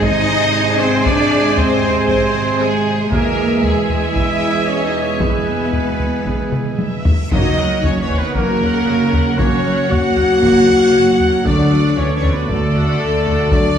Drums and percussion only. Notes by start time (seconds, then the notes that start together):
0.03 taiko
1.06 taiko
1.57 taiko low
1.84 taiko low
2.09 taiko
3.12 taiko
3.63 taiko low
3.89 taiko low
4.15 taiko
5.20 taiko
5.73 taiko low
6.00 taiko low
6.26 taiko
6.52 taiko mid
6.79 taiko high
7.05 taiko low
7.32 taiko
7.58 taiko rim
7.84 taiko low
8.10 taiko low
8.35 taiko
8.61 taiko low
9.13 taiko low
9.39 taiko
9.92 taiko low
10.18 taiko low
10.43 taiko
10.69 taiko low
11.20 taiko low
11.46 taiko
11.98 taiko low
12.23 taiko low
12.49 taiko
12.75 taiko low
13.26 taiko low
13.52 taiko